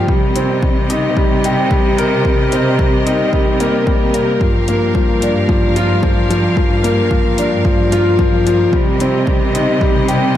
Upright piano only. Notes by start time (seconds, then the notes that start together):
Already playing: F3 A#3 D4 G4
0.09 G3
0.36 C4
0.63 G3
0.90 D#4
1.17 G3
1.45 G4
1.72 G3
1.99 A#4
2.25 G3
2.52 C4
2.80 G3
3.07 D#4
3.34 G3
3.60 A#3
3.88 G3
4.15 A#3
4.42 F3
4.69 A#3
4.95 F3
5.23 D4
5.49 F3
5.76 F4
6.02 F3
6.30 F3
6.57 F3
6.83 A#3
7.11 F3
7.38 D4
7.65 F3
7.92 F4
8.19 F3
8.47 F3
8.74 G3
9.01 C4
9.28 G3
9.55 D#4
9.81 G3
10.08 G4